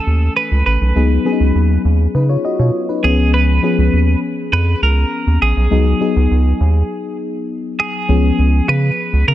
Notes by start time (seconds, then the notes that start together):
Already playing: E3 A3 C#4 A4 G#5
0.07 D#2
0.37 B4
0.51 C#2
0.66 A1 B4
0.81 B1
0.95 C#2 F#3 B3 D#4 G#4
1.25 F#3 B3 C#4 G#4
1.32 D#4
1.40 C#2
1.55 D#2
1.85 D#2
2.14 C#3 D#4 B4
2.29 F4 C#5
2.45 F#4 D#5
2.59 B2 F4 C#5
2.89 D#4 B4
3.03 C#2 F3 B3 C#4 G#4
3.34 B4
3.63 F3 B3 C#4 G#4
3.78 C#2
3.93 D#2
4.52 F2 B4
4.82 C#2 A#4
5.27 D#2
5.42 A#1 G#4
5.56 B1
5.71 C#2 F#3 B3 D#4 G#4
6.00 F#3 B3 D#4 G#4
6.16 C#2
6.31 C#2
6.60 D#2
7.80 G#4
8.09 C#2 F3 B3 C#4 G#4
8.39 C#2
8.68 C#3 B4
9.13 C#2
9.28 C#3 A#4